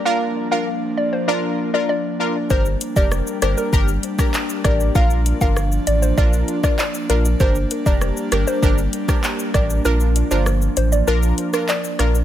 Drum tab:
HH |----------------|--x---x---x---x-|--x---x---x---x-|--x---x---x---x-|
SH |----------------|xxxxxxxxxxxxxxxx|xxxxxxxxxxxxxxxx|xxxxxxxxxxxxxxxx|
CP |----------------|------------x---|------------x---|------------x---|
SD |----------------|----r-r----r--r-|----r------r----|----r-r----r--r-|
BD |----------------|o--o----o--o--o-|o--o----o--o----|o--o----o--o--o-|

HH |--x---x---x---x-|
SH |xxxxxxxxxxxxxxxx|
CP |------------x---|
SD |----r------r--r-|
BD |----------------|